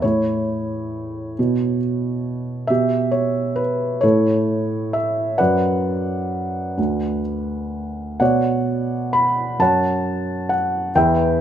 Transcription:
0.02 A2 E4 C#5
1.39 B2
2.67 B2 G4 E5
3.11 C#5
3.56 B4
4.01 A2 E4 A4 C#5
4.93 E5
5.38 F#2 B4 D5 F#5
6.78 D2
8.20 B2 C#5 D5 F#5
9.13 B5
9.59 F#2 C#5 F#5 A5
10.49 F#5
10.95 E2 B4 E5 G5

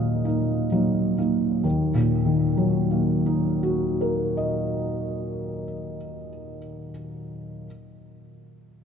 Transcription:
Already playing: D#2 A#2 F#3 A#3 D#4 D#5 F5
0.25 A#3 D#4
0.72 F#3 A#3 D#4
1.18 A#3 D#4
1.63 D#2
1.94 A#2
2.26 D#3
2.57 F#3
2.91 A#3
3.26 D#4
3.63 F#4
4.01 A#4
4.37 D#5

